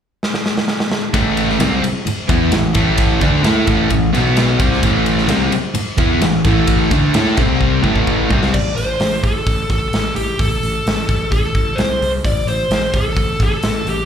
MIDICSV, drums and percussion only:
0, 0, Header, 1, 2, 480
1, 0, Start_track
1, 0, Key_signature, 0, "minor"
1, 0, Tempo, 462606
1, 1184, Time_signature, 4, 2, 24, 8
1, 14581, End_track
2, 0, Start_track
2, 0, Title_t, "Drums"
2, 238, Note_on_c, 9, 38, 63
2, 342, Note_off_c, 9, 38, 0
2, 355, Note_on_c, 9, 38, 69
2, 459, Note_off_c, 9, 38, 0
2, 474, Note_on_c, 9, 38, 75
2, 578, Note_off_c, 9, 38, 0
2, 597, Note_on_c, 9, 38, 87
2, 701, Note_off_c, 9, 38, 0
2, 705, Note_on_c, 9, 38, 84
2, 809, Note_off_c, 9, 38, 0
2, 833, Note_on_c, 9, 38, 88
2, 937, Note_off_c, 9, 38, 0
2, 949, Note_on_c, 9, 38, 106
2, 1053, Note_off_c, 9, 38, 0
2, 1182, Note_on_c, 9, 36, 92
2, 1184, Note_on_c, 9, 51, 93
2, 1286, Note_off_c, 9, 36, 0
2, 1288, Note_off_c, 9, 51, 0
2, 1422, Note_on_c, 9, 51, 74
2, 1526, Note_off_c, 9, 51, 0
2, 1553, Note_on_c, 9, 38, 33
2, 1657, Note_off_c, 9, 38, 0
2, 1660, Note_on_c, 9, 51, 105
2, 1669, Note_on_c, 9, 38, 114
2, 1764, Note_off_c, 9, 51, 0
2, 1773, Note_off_c, 9, 38, 0
2, 1908, Note_on_c, 9, 51, 82
2, 2012, Note_off_c, 9, 51, 0
2, 2145, Note_on_c, 9, 51, 95
2, 2248, Note_off_c, 9, 51, 0
2, 2378, Note_on_c, 9, 36, 95
2, 2381, Note_on_c, 9, 51, 74
2, 2482, Note_off_c, 9, 36, 0
2, 2485, Note_off_c, 9, 51, 0
2, 2612, Note_on_c, 9, 51, 91
2, 2622, Note_on_c, 9, 38, 101
2, 2716, Note_off_c, 9, 51, 0
2, 2725, Note_off_c, 9, 38, 0
2, 2848, Note_on_c, 9, 51, 80
2, 2854, Note_on_c, 9, 36, 106
2, 2952, Note_off_c, 9, 51, 0
2, 2958, Note_off_c, 9, 36, 0
2, 3088, Note_on_c, 9, 51, 99
2, 3094, Note_on_c, 9, 36, 105
2, 3192, Note_off_c, 9, 51, 0
2, 3198, Note_off_c, 9, 36, 0
2, 3333, Note_on_c, 9, 51, 73
2, 3335, Note_on_c, 9, 36, 97
2, 3437, Note_off_c, 9, 51, 0
2, 3439, Note_off_c, 9, 36, 0
2, 3572, Note_on_c, 9, 51, 94
2, 3581, Note_on_c, 9, 38, 105
2, 3676, Note_off_c, 9, 51, 0
2, 3685, Note_off_c, 9, 38, 0
2, 3810, Note_on_c, 9, 51, 72
2, 3815, Note_on_c, 9, 36, 101
2, 3914, Note_off_c, 9, 51, 0
2, 3918, Note_off_c, 9, 36, 0
2, 4050, Note_on_c, 9, 51, 89
2, 4053, Note_on_c, 9, 36, 90
2, 4154, Note_off_c, 9, 51, 0
2, 4157, Note_off_c, 9, 36, 0
2, 4301, Note_on_c, 9, 51, 70
2, 4405, Note_off_c, 9, 51, 0
2, 4530, Note_on_c, 9, 51, 90
2, 4539, Note_on_c, 9, 38, 105
2, 4634, Note_off_c, 9, 51, 0
2, 4643, Note_off_c, 9, 38, 0
2, 4770, Note_on_c, 9, 36, 114
2, 4771, Note_on_c, 9, 51, 76
2, 4874, Note_off_c, 9, 36, 0
2, 4875, Note_off_c, 9, 51, 0
2, 4906, Note_on_c, 9, 38, 35
2, 5009, Note_off_c, 9, 38, 0
2, 5012, Note_on_c, 9, 36, 108
2, 5013, Note_on_c, 9, 51, 91
2, 5115, Note_off_c, 9, 36, 0
2, 5117, Note_off_c, 9, 51, 0
2, 5251, Note_on_c, 9, 51, 68
2, 5355, Note_off_c, 9, 51, 0
2, 5375, Note_on_c, 9, 38, 32
2, 5479, Note_off_c, 9, 38, 0
2, 5485, Note_on_c, 9, 51, 95
2, 5494, Note_on_c, 9, 38, 99
2, 5588, Note_off_c, 9, 51, 0
2, 5598, Note_off_c, 9, 38, 0
2, 5730, Note_on_c, 9, 51, 79
2, 5833, Note_off_c, 9, 51, 0
2, 5962, Note_on_c, 9, 51, 97
2, 6066, Note_off_c, 9, 51, 0
2, 6202, Note_on_c, 9, 51, 68
2, 6207, Note_on_c, 9, 36, 106
2, 6305, Note_off_c, 9, 51, 0
2, 6310, Note_off_c, 9, 36, 0
2, 6448, Note_on_c, 9, 51, 98
2, 6458, Note_on_c, 9, 38, 101
2, 6552, Note_off_c, 9, 51, 0
2, 6562, Note_off_c, 9, 38, 0
2, 6688, Note_on_c, 9, 51, 82
2, 6689, Note_on_c, 9, 36, 113
2, 6792, Note_off_c, 9, 51, 0
2, 6793, Note_off_c, 9, 36, 0
2, 6925, Note_on_c, 9, 51, 93
2, 6930, Note_on_c, 9, 36, 97
2, 7028, Note_off_c, 9, 51, 0
2, 7034, Note_off_c, 9, 36, 0
2, 7171, Note_on_c, 9, 51, 73
2, 7173, Note_on_c, 9, 36, 108
2, 7274, Note_off_c, 9, 51, 0
2, 7277, Note_off_c, 9, 36, 0
2, 7408, Note_on_c, 9, 51, 100
2, 7418, Note_on_c, 9, 38, 113
2, 7512, Note_off_c, 9, 51, 0
2, 7521, Note_off_c, 9, 38, 0
2, 7649, Note_on_c, 9, 51, 73
2, 7654, Note_on_c, 9, 36, 104
2, 7752, Note_off_c, 9, 51, 0
2, 7758, Note_off_c, 9, 36, 0
2, 7893, Note_on_c, 9, 36, 61
2, 7996, Note_off_c, 9, 36, 0
2, 8132, Note_on_c, 9, 36, 72
2, 8236, Note_off_c, 9, 36, 0
2, 8255, Note_on_c, 9, 36, 64
2, 8358, Note_off_c, 9, 36, 0
2, 8377, Note_on_c, 9, 36, 85
2, 8481, Note_off_c, 9, 36, 0
2, 8618, Note_on_c, 9, 36, 101
2, 8721, Note_off_c, 9, 36, 0
2, 8745, Note_on_c, 9, 38, 89
2, 8849, Note_off_c, 9, 38, 0
2, 8861, Note_on_c, 9, 36, 94
2, 8862, Note_on_c, 9, 49, 100
2, 8964, Note_off_c, 9, 36, 0
2, 8965, Note_off_c, 9, 49, 0
2, 9105, Note_on_c, 9, 46, 57
2, 9208, Note_off_c, 9, 46, 0
2, 9337, Note_on_c, 9, 46, 73
2, 9346, Note_on_c, 9, 38, 109
2, 9440, Note_off_c, 9, 46, 0
2, 9450, Note_off_c, 9, 38, 0
2, 9583, Note_on_c, 9, 36, 79
2, 9586, Note_on_c, 9, 46, 52
2, 9687, Note_off_c, 9, 36, 0
2, 9690, Note_off_c, 9, 46, 0
2, 9822, Note_on_c, 9, 36, 95
2, 9825, Note_on_c, 9, 46, 70
2, 9926, Note_off_c, 9, 36, 0
2, 9929, Note_off_c, 9, 46, 0
2, 10062, Note_on_c, 9, 36, 76
2, 10065, Note_on_c, 9, 46, 49
2, 10166, Note_off_c, 9, 36, 0
2, 10169, Note_off_c, 9, 46, 0
2, 10304, Note_on_c, 9, 46, 64
2, 10314, Note_on_c, 9, 38, 93
2, 10408, Note_off_c, 9, 46, 0
2, 10417, Note_off_c, 9, 38, 0
2, 10545, Note_on_c, 9, 46, 61
2, 10648, Note_off_c, 9, 46, 0
2, 10784, Note_on_c, 9, 36, 94
2, 10789, Note_on_c, 9, 46, 75
2, 10888, Note_off_c, 9, 36, 0
2, 10893, Note_off_c, 9, 46, 0
2, 11030, Note_on_c, 9, 46, 56
2, 11134, Note_off_c, 9, 46, 0
2, 11276, Note_on_c, 9, 46, 65
2, 11286, Note_on_c, 9, 38, 104
2, 11380, Note_off_c, 9, 46, 0
2, 11390, Note_off_c, 9, 38, 0
2, 11505, Note_on_c, 9, 36, 82
2, 11509, Note_on_c, 9, 46, 52
2, 11609, Note_off_c, 9, 36, 0
2, 11613, Note_off_c, 9, 46, 0
2, 11744, Note_on_c, 9, 36, 97
2, 11745, Note_on_c, 9, 46, 60
2, 11848, Note_off_c, 9, 36, 0
2, 11849, Note_off_c, 9, 46, 0
2, 11983, Note_on_c, 9, 36, 77
2, 11986, Note_on_c, 9, 46, 49
2, 12087, Note_off_c, 9, 36, 0
2, 12089, Note_off_c, 9, 46, 0
2, 12225, Note_on_c, 9, 46, 63
2, 12234, Note_on_c, 9, 38, 95
2, 12328, Note_off_c, 9, 46, 0
2, 12338, Note_off_c, 9, 38, 0
2, 12475, Note_on_c, 9, 46, 54
2, 12579, Note_off_c, 9, 46, 0
2, 12706, Note_on_c, 9, 36, 95
2, 12710, Note_on_c, 9, 46, 64
2, 12809, Note_off_c, 9, 36, 0
2, 12814, Note_off_c, 9, 46, 0
2, 12949, Note_on_c, 9, 46, 51
2, 13053, Note_off_c, 9, 46, 0
2, 13186, Note_on_c, 9, 46, 65
2, 13195, Note_on_c, 9, 38, 101
2, 13290, Note_off_c, 9, 46, 0
2, 13299, Note_off_c, 9, 38, 0
2, 13423, Note_on_c, 9, 36, 89
2, 13430, Note_on_c, 9, 46, 52
2, 13527, Note_off_c, 9, 36, 0
2, 13533, Note_off_c, 9, 46, 0
2, 13660, Note_on_c, 9, 46, 63
2, 13661, Note_on_c, 9, 36, 89
2, 13764, Note_off_c, 9, 36, 0
2, 13764, Note_off_c, 9, 46, 0
2, 13903, Note_on_c, 9, 36, 77
2, 13905, Note_on_c, 9, 46, 55
2, 14007, Note_off_c, 9, 36, 0
2, 14009, Note_off_c, 9, 46, 0
2, 14139, Note_on_c, 9, 46, 67
2, 14149, Note_on_c, 9, 38, 101
2, 14243, Note_off_c, 9, 46, 0
2, 14252, Note_off_c, 9, 38, 0
2, 14389, Note_on_c, 9, 46, 58
2, 14493, Note_off_c, 9, 46, 0
2, 14581, End_track
0, 0, End_of_file